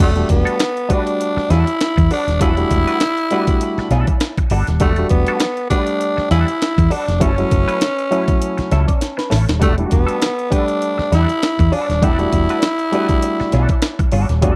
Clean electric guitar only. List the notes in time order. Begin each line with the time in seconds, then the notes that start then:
Already playing: G3 D4
0.00 F#4 A4
0.15 muted clean electric guitar stroke
0.30 muted clean electric guitar stroke
0.45 G3 D4 F#4 A4
0.58 muted clean electric guitar stroke
0.89 G3 D4 F#4 B4
1.07 muted clean electric guitar stroke
1.37 muted clean electric guitar stroke
1.50 G3 D4 F#4 A4
1.67 muted clean electric guitar stroke
1.97 muted clean electric guitar stroke
2.11 G3 D4 F#4 A4
2.28 muted clean electric guitar stroke
2.40 G3 D4 F#4 A4
2.57 muted clean electric guitar stroke
2.71 muted clean electric guitar stroke
2.87 G3 D4 F#4 B4
3.01 muted clean electric guitar stroke
3.32 G3 D4 F#4 B4
3.49 muted clean electric guitar stroke
3.62 muted clean electric guitar stroke
3.79 muted clean electric guitar stroke
3.91 G3 D4 F#4 A4
4.08 muted clean electric guitar stroke
4.38 muted clean electric guitar stroke
4.51 G3 D4 F#4 A4
4.69 muted clean electric guitar stroke
4.81 G3 D4 F#4 A4
4.99 muted clean electric guitar stroke
5.11 muted clean electric guitar stroke
5.28 G3 D4 F#4 A4
5.40 muted clean electric guitar stroke
5.71 G3 D4 F#4 B4
5.87 muted clean electric guitar stroke
6.17 muted clean electric guitar stroke
6.31 G3 D4 F#4 A4
6.47 muted clean electric guitar stroke
6.78 muted clean electric guitar stroke
6.90 G3 D4 F#4 A4
7.08 muted clean electric guitar stroke
7.20 A3 C#4 E4 A4
7.38 muted clean electric guitar stroke
7.50 muted clean electric guitar stroke
7.68 A3 C#4 E4 B4
7.81 muted clean electric guitar stroke
8.11 A3 C#4 E4 B4
8.28 muted clean electric guitar stroke
8.57 muted clean electric guitar stroke
8.72 A3 C#4 E4 A4
8.88 muted clean electric guitar stroke
9.17 muted clean electric guitar stroke
9.30 A3 C#4 E4 A4
9.47 muted clean electric guitar stroke
9.60 G3 D4 F#4 A4
9.77 muted clean electric guitar stroke
9.90 muted clean electric guitar stroke
10.07 G3 D4 F#4 A4
10.21 muted clean electric guitar stroke
10.50 G3 D4 F#4 B4
10.69 muted clean electric guitar stroke
10.98 muted clean electric guitar stroke
11.12 G3 D4 F#4 A4
11.28 muted clean electric guitar stroke
11.59 muted clean electric guitar stroke
11.72 G3 D4 F#4 A4
11.89 muted clean electric guitar stroke
12.02 G3 D4 F#4 A4
12.20 muted clean electric guitar stroke
12.33 muted clean electric guitar stroke
12.50 G3 D4 F#4 B4
12.64 muted clean electric guitar stroke
12.94 G3 D4 F#4 B4
13.10 muted clean electric guitar stroke
13.23 muted clean electric guitar stroke
13.40 muted clean electric guitar stroke
13.53 G3 D4 F#4 A4
13.70 muted clean electric guitar stroke
13.99 muted clean electric guitar stroke
14.12 G3 D4 F#4 A4
14.29 muted clean electric guitar stroke
14.42 G3 D4 F#4 A4